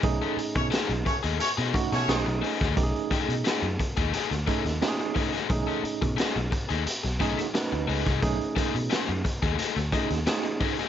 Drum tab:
HH |xxxxxxxxxxxxxxox|xxxxxxxxxxxxxxox|xxxxxxxxxxxxxxox|xxxxxxxxxxxxxxox|
SD |----o---oo-oo--o|----o---oo-oo--o|----o---oo-oo--o|----o---oo-oo--o|
BD |o--o--o---o----o|o-o---oo--o---o-|o--o--o---o----o|o-o---oo--o---o-|